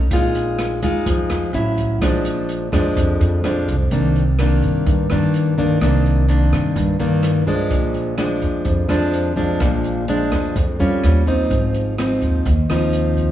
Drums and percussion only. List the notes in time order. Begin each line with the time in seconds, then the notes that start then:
0.11 kick, closed hi-hat
0.35 closed hi-hat
0.59 cross-stick, closed hi-hat
0.82 kick, closed hi-hat
1.06 kick, closed hi-hat
1.30 cross-stick, closed hi-hat
1.54 closed hi-hat
1.78 kick, closed hi-hat
2.02 kick, cross-stick, closed hi-hat
2.25 closed hi-hat
2.49 closed hi-hat
2.73 kick, cross-stick, closed hi-hat
2.97 kick, closed hi-hat
3.21 closed hi-hat
3.44 cross-stick, closed hi-hat
3.68 kick, closed hi-hat
3.91 kick, closed hi-hat
4.16 closed hi-hat
4.39 cross-stick, closed hi-hat
4.62 kick, closed hi-hat
4.86 kick, closed hi-hat
5.10 cross-stick, closed hi-hat
5.34 closed hi-hat
5.58 kick, closed hi-hat
5.81 kick, cross-stick, closed hi-hat
6.06 closed hi-hat
6.29 closed hi-hat
6.52 kick, cross-stick, closed hi-hat
6.76 kick, closed hi-hat
6.99 closed hi-hat
7.23 cross-stick, closed hi-hat
7.47 kick, closed hi-hat
7.71 kick, closed hi-hat
7.94 closed hi-hat
8.18 cross-stick, closed hi-hat
8.42 kick, closed hi-hat
8.65 kick, closed hi-hat
8.89 cross-stick, closed hi-hat
9.13 closed hi-hat
9.37 kick, closed hi-hat
9.60 kick, cross-stick, closed hi-hat
9.84 closed hi-hat
10.08 closed hi-hat
10.32 kick, cross-stick, closed hi-hat
10.56 kick, closed hi-hat
10.80 closed hi-hat
11.04 cross-stick, closed hi-hat
11.27 kick, closed hi-hat
11.51 kick, closed hi-hat
11.74 closed hi-hat
11.98 cross-stick, closed hi-hat
12.22 kick, closed hi-hat
12.46 kick, closed hi-hat
12.70 cross-stick, closed hi-hat
12.93 closed hi-hat
13.17 kick, closed hi-hat